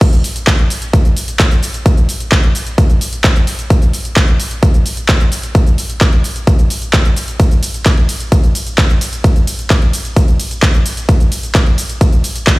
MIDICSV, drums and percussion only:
0, 0, Header, 1, 2, 480
1, 0, Start_track
1, 0, Tempo, 461538
1, 11, Time_signature, 4, 2, 24, 8
1, 13094, End_track
2, 0, Start_track
2, 0, Title_t, "Drums"
2, 12, Note_on_c, 9, 36, 117
2, 12, Note_on_c, 9, 42, 56
2, 12, Note_on_c, 9, 49, 77
2, 17, Note_on_c, 9, 69, 44
2, 116, Note_off_c, 9, 36, 0
2, 116, Note_off_c, 9, 42, 0
2, 116, Note_off_c, 9, 49, 0
2, 121, Note_off_c, 9, 69, 0
2, 132, Note_on_c, 9, 42, 28
2, 137, Note_on_c, 9, 69, 32
2, 236, Note_off_c, 9, 42, 0
2, 241, Note_off_c, 9, 69, 0
2, 252, Note_on_c, 9, 46, 111
2, 257, Note_on_c, 9, 69, 79
2, 356, Note_off_c, 9, 46, 0
2, 361, Note_off_c, 9, 69, 0
2, 372, Note_on_c, 9, 42, 54
2, 377, Note_on_c, 9, 69, 34
2, 476, Note_off_c, 9, 42, 0
2, 481, Note_off_c, 9, 69, 0
2, 490, Note_on_c, 9, 39, 127
2, 492, Note_on_c, 9, 36, 123
2, 492, Note_on_c, 9, 42, 57
2, 497, Note_on_c, 9, 69, 46
2, 594, Note_off_c, 9, 39, 0
2, 596, Note_off_c, 9, 36, 0
2, 596, Note_off_c, 9, 42, 0
2, 601, Note_off_c, 9, 69, 0
2, 612, Note_on_c, 9, 42, 28
2, 716, Note_off_c, 9, 42, 0
2, 732, Note_on_c, 9, 46, 107
2, 737, Note_on_c, 9, 69, 80
2, 836, Note_off_c, 9, 46, 0
2, 841, Note_off_c, 9, 69, 0
2, 852, Note_on_c, 9, 42, 55
2, 857, Note_on_c, 9, 69, 34
2, 956, Note_off_c, 9, 42, 0
2, 961, Note_off_c, 9, 69, 0
2, 972, Note_on_c, 9, 36, 118
2, 972, Note_on_c, 9, 42, 56
2, 977, Note_on_c, 9, 69, 44
2, 1076, Note_off_c, 9, 36, 0
2, 1076, Note_off_c, 9, 42, 0
2, 1081, Note_off_c, 9, 69, 0
2, 1092, Note_on_c, 9, 42, 28
2, 1097, Note_on_c, 9, 69, 33
2, 1196, Note_off_c, 9, 42, 0
2, 1201, Note_off_c, 9, 69, 0
2, 1212, Note_on_c, 9, 46, 107
2, 1217, Note_on_c, 9, 69, 82
2, 1316, Note_off_c, 9, 46, 0
2, 1321, Note_off_c, 9, 69, 0
2, 1332, Note_on_c, 9, 42, 57
2, 1337, Note_on_c, 9, 69, 33
2, 1436, Note_off_c, 9, 42, 0
2, 1441, Note_off_c, 9, 69, 0
2, 1450, Note_on_c, 9, 39, 125
2, 1452, Note_on_c, 9, 36, 127
2, 1452, Note_on_c, 9, 42, 58
2, 1457, Note_on_c, 9, 69, 45
2, 1554, Note_off_c, 9, 39, 0
2, 1556, Note_off_c, 9, 36, 0
2, 1556, Note_off_c, 9, 42, 0
2, 1561, Note_off_c, 9, 69, 0
2, 1571, Note_on_c, 9, 42, 29
2, 1576, Note_on_c, 9, 69, 33
2, 1675, Note_off_c, 9, 42, 0
2, 1680, Note_off_c, 9, 69, 0
2, 1691, Note_on_c, 9, 46, 114
2, 1696, Note_on_c, 9, 69, 83
2, 1795, Note_off_c, 9, 46, 0
2, 1800, Note_off_c, 9, 69, 0
2, 1812, Note_on_c, 9, 42, 57
2, 1817, Note_on_c, 9, 69, 34
2, 1916, Note_off_c, 9, 42, 0
2, 1921, Note_off_c, 9, 69, 0
2, 1931, Note_on_c, 9, 36, 123
2, 1932, Note_on_c, 9, 42, 53
2, 1937, Note_on_c, 9, 69, 43
2, 2035, Note_off_c, 9, 36, 0
2, 2036, Note_off_c, 9, 42, 0
2, 2041, Note_off_c, 9, 69, 0
2, 2052, Note_on_c, 9, 42, 26
2, 2057, Note_on_c, 9, 69, 31
2, 2156, Note_off_c, 9, 42, 0
2, 2161, Note_off_c, 9, 69, 0
2, 2172, Note_on_c, 9, 46, 110
2, 2177, Note_on_c, 9, 69, 78
2, 2276, Note_off_c, 9, 46, 0
2, 2281, Note_off_c, 9, 69, 0
2, 2292, Note_on_c, 9, 42, 53
2, 2297, Note_on_c, 9, 69, 32
2, 2396, Note_off_c, 9, 42, 0
2, 2401, Note_off_c, 9, 69, 0
2, 2410, Note_on_c, 9, 39, 127
2, 2412, Note_on_c, 9, 36, 127
2, 2412, Note_on_c, 9, 42, 55
2, 2417, Note_on_c, 9, 69, 44
2, 2514, Note_off_c, 9, 39, 0
2, 2516, Note_off_c, 9, 36, 0
2, 2516, Note_off_c, 9, 42, 0
2, 2521, Note_off_c, 9, 69, 0
2, 2532, Note_on_c, 9, 42, 27
2, 2636, Note_off_c, 9, 42, 0
2, 2652, Note_on_c, 9, 46, 112
2, 2657, Note_on_c, 9, 69, 75
2, 2756, Note_off_c, 9, 46, 0
2, 2761, Note_off_c, 9, 69, 0
2, 2772, Note_on_c, 9, 42, 53
2, 2777, Note_on_c, 9, 69, 32
2, 2876, Note_off_c, 9, 42, 0
2, 2881, Note_off_c, 9, 69, 0
2, 2892, Note_on_c, 9, 36, 127
2, 2892, Note_on_c, 9, 42, 55
2, 2897, Note_on_c, 9, 69, 44
2, 2996, Note_off_c, 9, 36, 0
2, 2996, Note_off_c, 9, 42, 0
2, 3001, Note_off_c, 9, 69, 0
2, 3012, Note_on_c, 9, 42, 28
2, 3017, Note_on_c, 9, 69, 31
2, 3116, Note_off_c, 9, 42, 0
2, 3121, Note_off_c, 9, 69, 0
2, 3132, Note_on_c, 9, 46, 114
2, 3137, Note_on_c, 9, 69, 78
2, 3236, Note_off_c, 9, 46, 0
2, 3241, Note_off_c, 9, 69, 0
2, 3252, Note_on_c, 9, 42, 54
2, 3257, Note_on_c, 9, 69, 33
2, 3356, Note_off_c, 9, 42, 0
2, 3361, Note_off_c, 9, 69, 0
2, 3370, Note_on_c, 9, 39, 126
2, 3372, Note_on_c, 9, 36, 127
2, 3372, Note_on_c, 9, 42, 52
2, 3377, Note_on_c, 9, 69, 44
2, 3474, Note_off_c, 9, 39, 0
2, 3476, Note_off_c, 9, 36, 0
2, 3476, Note_off_c, 9, 42, 0
2, 3481, Note_off_c, 9, 69, 0
2, 3492, Note_on_c, 9, 42, 28
2, 3497, Note_on_c, 9, 69, 31
2, 3596, Note_off_c, 9, 42, 0
2, 3601, Note_off_c, 9, 69, 0
2, 3611, Note_on_c, 9, 46, 116
2, 3616, Note_on_c, 9, 69, 81
2, 3715, Note_off_c, 9, 46, 0
2, 3720, Note_off_c, 9, 69, 0
2, 3731, Note_on_c, 9, 42, 53
2, 3736, Note_on_c, 9, 69, 33
2, 3835, Note_off_c, 9, 42, 0
2, 3840, Note_off_c, 9, 69, 0
2, 3851, Note_on_c, 9, 42, 49
2, 3852, Note_on_c, 9, 36, 124
2, 3857, Note_on_c, 9, 69, 43
2, 3955, Note_off_c, 9, 42, 0
2, 3956, Note_off_c, 9, 36, 0
2, 3961, Note_off_c, 9, 69, 0
2, 3971, Note_on_c, 9, 42, 26
2, 3976, Note_on_c, 9, 69, 30
2, 4075, Note_off_c, 9, 42, 0
2, 4080, Note_off_c, 9, 69, 0
2, 4092, Note_on_c, 9, 46, 113
2, 4097, Note_on_c, 9, 69, 77
2, 4196, Note_off_c, 9, 46, 0
2, 4201, Note_off_c, 9, 69, 0
2, 4212, Note_on_c, 9, 42, 53
2, 4217, Note_on_c, 9, 69, 33
2, 4316, Note_off_c, 9, 42, 0
2, 4321, Note_off_c, 9, 69, 0
2, 4330, Note_on_c, 9, 39, 124
2, 4332, Note_on_c, 9, 36, 127
2, 4332, Note_on_c, 9, 42, 53
2, 4337, Note_on_c, 9, 69, 43
2, 4434, Note_off_c, 9, 39, 0
2, 4436, Note_off_c, 9, 36, 0
2, 4436, Note_off_c, 9, 42, 0
2, 4441, Note_off_c, 9, 69, 0
2, 4452, Note_on_c, 9, 42, 26
2, 4556, Note_off_c, 9, 42, 0
2, 4572, Note_on_c, 9, 46, 113
2, 4577, Note_on_c, 9, 69, 75
2, 4676, Note_off_c, 9, 46, 0
2, 4681, Note_off_c, 9, 69, 0
2, 4691, Note_on_c, 9, 42, 52
2, 4696, Note_on_c, 9, 69, 30
2, 4795, Note_off_c, 9, 42, 0
2, 4800, Note_off_c, 9, 69, 0
2, 4811, Note_on_c, 9, 42, 54
2, 4812, Note_on_c, 9, 36, 125
2, 4816, Note_on_c, 9, 69, 42
2, 4915, Note_off_c, 9, 42, 0
2, 4916, Note_off_c, 9, 36, 0
2, 4920, Note_off_c, 9, 69, 0
2, 4931, Note_on_c, 9, 42, 27
2, 4936, Note_on_c, 9, 69, 31
2, 5035, Note_off_c, 9, 42, 0
2, 5040, Note_off_c, 9, 69, 0
2, 5051, Note_on_c, 9, 46, 111
2, 5056, Note_on_c, 9, 69, 79
2, 5155, Note_off_c, 9, 46, 0
2, 5160, Note_off_c, 9, 69, 0
2, 5170, Note_on_c, 9, 42, 50
2, 5175, Note_on_c, 9, 69, 34
2, 5274, Note_off_c, 9, 42, 0
2, 5279, Note_off_c, 9, 69, 0
2, 5289, Note_on_c, 9, 39, 123
2, 5291, Note_on_c, 9, 36, 127
2, 5291, Note_on_c, 9, 42, 54
2, 5296, Note_on_c, 9, 69, 43
2, 5393, Note_off_c, 9, 39, 0
2, 5395, Note_off_c, 9, 36, 0
2, 5395, Note_off_c, 9, 42, 0
2, 5400, Note_off_c, 9, 69, 0
2, 5411, Note_on_c, 9, 42, 27
2, 5415, Note_on_c, 9, 69, 31
2, 5515, Note_off_c, 9, 42, 0
2, 5519, Note_off_c, 9, 69, 0
2, 5530, Note_on_c, 9, 46, 119
2, 5535, Note_on_c, 9, 69, 81
2, 5634, Note_off_c, 9, 46, 0
2, 5639, Note_off_c, 9, 69, 0
2, 5651, Note_on_c, 9, 42, 54
2, 5656, Note_on_c, 9, 69, 32
2, 5755, Note_off_c, 9, 42, 0
2, 5760, Note_off_c, 9, 69, 0
2, 5771, Note_on_c, 9, 36, 125
2, 5771, Note_on_c, 9, 42, 49
2, 5776, Note_on_c, 9, 69, 44
2, 5875, Note_off_c, 9, 36, 0
2, 5875, Note_off_c, 9, 42, 0
2, 5880, Note_off_c, 9, 69, 0
2, 5892, Note_on_c, 9, 42, 25
2, 5897, Note_on_c, 9, 69, 30
2, 5996, Note_off_c, 9, 42, 0
2, 6001, Note_off_c, 9, 69, 0
2, 6012, Note_on_c, 9, 46, 108
2, 6017, Note_on_c, 9, 69, 76
2, 6116, Note_off_c, 9, 46, 0
2, 6121, Note_off_c, 9, 69, 0
2, 6132, Note_on_c, 9, 42, 51
2, 6137, Note_on_c, 9, 69, 31
2, 6236, Note_off_c, 9, 42, 0
2, 6241, Note_off_c, 9, 69, 0
2, 6250, Note_on_c, 9, 39, 120
2, 6252, Note_on_c, 9, 36, 127
2, 6252, Note_on_c, 9, 42, 51
2, 6257, Note_on_c, 9, 69, 44
2, 6354, Note_off_c, 9, 39, 0
2, 6356, Note_off_c, 9, 36, 0
2, 6356, Note_off_c, 9, 42, 0
2, 6361, Note_off_c, 9, 69, 0
2, 6371, Note_on_c, 9, 42, 25
2, 6475, Note_off_c, 9, 42, 0
2, 6492, Note_on_c, 9, 46, 109
2, 6497, Note_on_c, 9, 69, 81
2, 6596, Note_off_c, 9, 46, 0
2, 6601, Note_off_c, 9, 69, 0
2, 6613, Note_on_c, 9, 42, 49
2, 6618, Note_on_c, 9, 69, 32
2, 6717, Note_off_c, 9, 42, 0
2, 6722, Note_off_c, 9, 69, 0
2, 6732, Note_on_c, 9, 36, 126
2, 6732, Note_on_c, 9, 42, 51
2, 6737, Note_on_c, 9, 69, 44
2, 6836, Note_off_c, 9, 36, 0
2, 6836, Note_off_c, 9, 42, 0
2, 6841, Note_off_c, 9, 69, 0
2, 6852, Note_on_c, 9, 42, 26
2, 6857, Note_on_c, 9, 69, 31
2, 6956, Note_off_c, 9, 42, 0
2, 6961, Note_off_c, 9, 69, 0
2, 6971, Note_on_c, 9, 46, 113
2, 6976, Note_on_c, 9, 69, 79
2, 7075, Note_off_c, 9, 46, 0
2, 7080, Note_off_c, 9, 69, 0
2, 7092, Note_on_c, 9, 42, 51
2, 7097, Note_on_c, 9, 69, 33
2, 7196, Note_off_c, 9, 42, 0
2, 7201, Note_off_c, 9, 69, 0
2, 7209, Note_on_c, 9, 39, 119
2, 7211, Note_on_c, 9, 42, 51
2, 7212, Note_on_c, 9, 36, 126
2, 7216, Note_on_c, 9, 69, 45
2, 7313, Note_off_c, 9, 39, 0
2, 7315, Note_off_c, 9, 42, 0
2, 7316, Note_off_c, 9, 36, 0
2, 7320, Note_off_c, 9, 69, 0
2, 7331, Note_on_c, 9, 42, 26
2, 7336, Note_on_c, 9, 69, 31
2, 7435, Note_off_c, 9, 42, 0
2, 7440, Note_off_c, 9, 69, 0
2, 7451, Note_on_c, 9, 46, 113
2, 7456, Note_on_c, 9, 69, 81
2, 7555, Note_off_c, 9, 46, 0
2, 7560, Note_off_c, 9, 69, 0
2, 7571, Note_on_c, 9, 42, 53
2, 7576, Note_on_c, 9, 69, 34
2, 7675, Note_off_c, 9, 42, 0
2, 7680, Note_off_c, 9, 69, 0
2, 7691, Note_on_c, 9, 42, 50
2, 7691, Note_on_c, 9, 51, 59
2, 7692, Note_on_c, 9, 36, 115
2, 7696, Note_on_c, 9, 69, 45
2, 7795, Note_off_c, 9, 42, 0
2, 7795, Note_off_c, 9, 51, 0
2, 7796, Note_off_c, 9, 36, 0
2, 7800, Note_off_c, 9, 69, 0
2, 7812, Note_on_c, 9, 42, 25
2, 7817, Note_on_c, 9, 69, 32
2, 7916, Note_off_c, 9, 42, 0
2, 7921, Note_off_c, 9, 69, 0
2, 7932, Note_on_c, 9, 46, 109
2, 7932, Note_on_c, 9, 51, 87
2, 7937, Note_on_c, 9, 69, 82
2, 8036, Note_off_c, 9, 46, 0
2, 8036, Note_off_c, 9, 51, 0
2, 8041, Note_off_c, 9, 69, 0
2, 8052, Note_on_c, 9, 42, 51
2, 8057, Note_on_c, 9, 69, 32
2, 8156, Note_off_c, 9, 42, 0
2, 8161, Note_off_c, 9, 69, 0
2, 8170, Note_on_c, 9, 39, 115
2, 8172, Note_on_c, 9, 36, 125
2, 8172, Note_on_c, 9, 42, 52
2, 8172, Note_on_c, 9, 51, 60
2, 8177, Note_on_c, 9, 69, 46
2, 8274, Note_off_c, 9, 39, 0
2, 8276, Note_off_c, 9, 36, 0
2, 8276, Note_off_c, 9, 42, 0
2, 8276, Note_off_c, 9, 51, 0
2, 8281, Note_off_c, 9, 69, 0
2, 8293, Note_on_c, 9, 42, 26
2, 8397, Note_off_c, 9, 42, 0
2, 8413, Note_on_c, 9, 46, 109
2, 8413, Note_on_c, 9, 51, 82
2, 8418, Note_on_c, 9, 69, 84
2, 8517, Note_off_c, 9, 46, 0
2, 8517, Note_off_c, 9, 51, 0
2, 8522, Note_off_c, 9, 69, 0
2, 8532, Note_on_c, 9, 42, 50
2, 8537, Note_on_c, 9, 69, 34
2, 8636, Note_off_c, 9, 42, 0
2, 8641, Note_off_c, 9, 69, 0
2, 8652, Note_on_c, 9, 36, 117
2, 8652, Note_on_c, 9, 42, 51
2, 8652, Note_on_c, 9, 51, 61
2, 8657, Note_on_c, 9, 69, 47
2, 8756, Note_off_c, 9, 36, 0
2, 8756, Note_off_c, 9, 42, 0
2, 8756, Note_off_c, 9, 51, 0
2, 8761, Note_off_c, 9, 69, 0
2, 8773, Note_on_c, 9, 42, 27
2, 8778, Note_on_c, 9, 69, 32
2, 8877, Note_off_c, 9, 42, 0
2, 8882, Note_off_c, 9, 69, 0
2, 8893, Note_on_c, 9, 46, 107
2, 8893, Note_on_c, 9, 51, 84
2, 8898, Note_on_c, 9, 69, 82
2, 8997, Note_off_c, 9, 46, 0
2, 8997, Note_off_c, 9, 51, 0
2, 9002, Note_off_c, 9, 69, 0
2, 9013, Note_on_c, 9, 42, 50
2, 9018, Note_on_c, 9, 69, 35
2, 9117, Note_off_c, 9, 42, 0
2, 9122, Note_off_c, 9, 69, 0
2, 9131, Note_on_c, 9, 39, 117
2, 9132, Note_on_c, 9, 36, 126
2, 9133, Note_on_c, 9, 42, 51
2, 9133, Note_on_c, 9, 51, 58
2, 9138, Note_on_c, 9, 69, 45
2, 9235, Note_off_c, 9, 39, 0
2, 9236, Note_off_c, 9, 36, 0
2, 9237, Note_off_c, 9, 42, 0
2, 9237, Note_off_c, 9, 51, 0
2, 9242, Note_off_c, 9, 69, 0
2, 9253, Note_on_c, 9, 42, 26
2, 9258, Note_on_c, 9, 69, 33
2, 9357, Note_off_c, 9, 42, 0
2, 9362, Note_off_c, 9, 69, 0
2, 9373, Note_on_c, 9, 46, 115
2, 9373, Note_on_c, 9, 51, 85
2, 9378, Note_on_c, 9, 69, 82
2, 9477, Note_off_c, 9, 46, 0
2, 9477, Note_off_c, 9, 51, 0
2, 9482, Note_off_c, 9, 69, 0
2, 9493, Note_on_c, 9, 42, 53
2, 9498, Note_on_c, 9, 69, 36
2, 9597, Note_off_c, 9, 42, 0
2, 9602, Note_off_c, 9, 69, 0
2, 9612, Note_on_c, 9, 36, 112
2, 9612, Note_on_c, 9, 42, 53
2, 9612, Note_on_c, 9, 51, 59
2, 9617, Note_on_c, 9, 69, 47
2, 9716, Note_off_c, 9, 36, 0
2, 9716, Note_off_c, 9, 42, 0
2, 9716, Note_off_c, 9, 51, 0
2, 9721, Note_off_c, 9, 69, 0
2, 9733, Note_on_c, 9, 42, 26
2, 9738, Note_on_c, 9, 69, 34
2, 9837, Note_off_c, 9, 42, 0
2, 9842, Note_off_c, 9, 69, 0
2, 9853, Note_on_c, 9, 46, 105
2, 9853, Note_on_c, 9, 51, 87
2, 9858, Note_on_c, 9, 69, 86
2, 9957, Note_off_c, 9, 46, 0
2, 9957, Note_off_c, 9, 51, 0
2, 9962, Note_off_c, 9, 69, 0
2, 9973, Note_on_c, 9, 42, 53
2, 9978, Note_on_c, 9, 69, 36
2, 10077, Note_off_c, 9, 42, 0
2, 10082, Note_off_c, 9, 69, 0
2, 10090, Note_on_c, 9, 39, 112
2, 10092, Note_on_c, 9, 36, 118
2, 10092, Note_on_c, 9, 42, 54
2, 10092, Note_on_c, 9, 51, 60
2, 10097, Note_on_c, 9, 69, 49
2, 10194, Note_off_c, 9, 39, 0
2, 10196, Note_off_c, 9, 36, 0
2, 10196, Note_off_c, 9, 42, 0
2, 10196, Note_off_c, 9, 51, 0
2, 10201, Note_off_c, 9, 69, 0
2, 10211, Note_on_c, 9, 42, 27
2, 10315, Note_off_c, 9, 42, 0
2, 10332, Note_on_c, 9, 46, 103
2, 10332, Note_on_c, 9, 51, 87
2, 10337, Note_on_c, 9, 69, 85
2, 10436, Note_off_c, 9, 46, 0
2, 10436, Note_off_c, 9, 51, 0
2, 10441, Note_off_c, 9, 69, 0
2, 10452, Note_on_c, 9, 42, 52
2, 10457, Note_on_c, 9, 69, 35
2, 10556, Note_off_c, 9, 42, 0
2, 10561, Note_off_c, 9, 69, 0
2, 10571, Note_on_c, 9, 36, 113
2, 10572, Note_on_c, 9, 42, 54
2, 10572, Note_on_c, 9, 51, 60
2, 10577, Note_on_c, 9, 69, 47
2, 10675, Note_off_c, 9, 36, 0
2, 10676, Note_off_c, 9, 42, 0
2, 10676, Note_off_c, 9, 51, 0
2, 10681, Note_off_c, 9, 69, 0
2, 10692, Note_on_c, 9, 42, 28
2, 10697, Note_on_c, 9, 69, 34
2, 10796, Note_off_c, 9, 42, 0
2, 10801, Note_off_c, 9, 69, 0
2, 10811, Note_on_c, 9, 46, 101
2, 10811, Note_on_c, 9, 51, 86
2, 10816, Note_on_c, 9, 69, 85
2, 10915, Note_off_c, 9, 46, 0
2, 10915, Note_off_c, 9, 51, 0
2, 10920, Note_off_c, 9, 69, 0
2, 10932, Note_on_c, 9, 42, 55
2, 10937, Note_on_c, 9, 69, 36
2, 11036, Note_off_c, 9, 42, 0
2, 11041, Note_off_c, 9, 69, 0
2, 11049, Note_on_c, 9, 39, 117
2, 11051, Note_on_c, 9, 36, 120
2, 11051, Note_on_c, 9, 42, 53
2, 11051, Note_on_c, 9, 51, 59
2, 11056, Note_on_c, 9, 69, 49
2, 11153, Note_off_c, 9, 39, 0
2, 11155, Note_off_c, 9, 36, 0
2, 11155, Note_off_c, 9, 42, 0
2, 11155, Note_off_c, 9, 51, 0
2, 11160, Note_off_c, 9, 69, 0
2, 11171, Note_on_c, 9, 42, 28
2, 11176, Note_on_c, 9, 69, 34
2, 11275, Note_off_c, 9, 42, 0
2, 11280, Note_off_c, 9, 69, 0
2, 11290, Note_on_c, 9, 46, 108
2, 11290, Note_on_c, 9, 51, 90
2, 11295, Note_on_c, 9, 69, 87
2, 11394, Note_off_c, 9, 46, 0
2, 11394, Note_off_c, 9, 51, 0
2, 11399, Note_off_c, 9, 69, 0
2, 11411, Note_on_c, 9, 42, 54
2, 11416, Note_on_c, 9, 69, 37
2, 11515, Note_off_c, 9, 42, 0
2, 11520, Note_off_c, 9, 69, 0
2, 11530, Note_on_c, 9, 36, 116
2, 11531, Note_on_c, 9, 42, 54
2, 11531, Note_on_c, 9, 51, 55
2, 11536, Note_on_c, 9, 69, 47
2, 11634, Note_off_c, 9, 36, 0
2, 11635, Note_off_c, 9, 42, 0
2, 11635, Note_off_c, 9, 51, 0
2, 11640, Note_off_c, 9, 69, 0
2, 11651, Note_on_c, 9, 42, 27
2, 11656, Note_on_c, 9, 69, 33
2, 11755, Note_off_c, 9, 42, 0
2, 11760, Note_off_c, 9, 69, 0
2, 11770, Note_on_c, 9, 46, 105
2, 11770, Note_on_c, 9, 51, 80
2, 11776, Note_on_c, 9, 69, 88
2, 11874, Note_off_c, 9, 46, 0
2, 11874, Note_off_c, 9, 51, 0
2, 11880, Note_off_c, 9, 69, 0
2, 11891, Note_on_c, 9, 42, 54
2, 11896, Note_on_c, 9, 69, 36
2, 11995, Note_off_c, 9, 42, 0
2, 12000, Note_off_c, 9, 69, 0
2, 12009, Note_on_c, 9, 39, 118
2, 12011, Note_on_c, 9, 36, 120
2, 12011, Note_on_c, 9, 42, 57
2, 12011, Note_on_c, 9, 51, 61
2, 12016, Note_on_c, 9, 69, 50
2, 12113, Note_off_c, 9, 39, 0
2, 12115, Note_off_c, 9, 36, 0
2, 12115, Note_off_c, 9, 42, 0
2, 12115, Note_off_c, 9, 51, 0
2, 12120, Note_off_c, 9, 69, 0
2, 12131, Note_on_c, 9, 42, 27
2, 12235, Note_off_c, 9, 42, 0
2, 12251, Note_on_c, 9, 46, 104
2, 12251, Note_on_c, 9, 51, 83
2, 12256, Note_on_c, 9, 69, 85
2, 12355, Note_off_c, 9, 46, 0
2, 12355, Note_off_c, 9, 51, 0
2, 12360, Note_off_c, 9, 69, 0
2, 12371, Note_on_c, 9, 42, 54
2, 12376, Note_on_c, 9, 69, 34
2, 12475, Note_off_c, 9, 42, 0
2, 12480, Note_off_c, 9, 69, 0
2, 12491, Note_on_c, 9, 36, 112
2, 12491, Note_on_c, 9, 42, 55
2, 12491, Note_on_c, 9, 51, 59
2, 12496, Note_on_c, 9, 69, 47
2, 12595, Note_off_c, 9, 36, 0
2, 12595, Note_off_c, 9, 42, 0
2, 12595, Note_off_c, 9, 51, 0
2, 12600, Note_off_c, 9, 69, 0
2, 12610, Note_on_c, 9, 42, 28
2, 12615, Note_on_c, 9, 69, 34
2, 12714, Note_off_c, 9, 42, 0
2, 12719, Note_off_c, 9, 69, 0
2, 12730, Note_on_c, 9, 46, 102
2, 12730, Note_on_c, 9, 51, 83
2, 12735, Note_on_c, 9, 69, 83
2, 12834, Note_off_c, 9, 46, 0
2, 12834, Note_off_c, 9, 51, 0
2, 12839, Note_off_c, 9, 69, 0
2, 12850, Note_on_c, 9, 42, 57
2, 12855, Note_on_c, 9, 69, 36
2, 12954, Note_off_c, 9, 42, 0
2, 12959, Note_off_c, 9, 69, 0
2, 12968, Note_on_c, 9, 39, 121
2, 12970, Note_on_c, 9, 42, 54
2, 12970, Note_on_c, 9, 51, 57
2, 12971, Note_on_c, 9, 36, 120
2, 12975, Note_on_c, 9, 69, 48
2, 13072, Note_off_c, 9, 39, 0
2, 13074, Note_off_c, 9, 42, 0
2, 13074, Note_off_c, 9, 51, 0
2, 13075, Note_off_c, 9, 36, 0
2, 13079, Note_off_c, 9, 69, 0
2, 13094, End_track
0, 0, End_of_file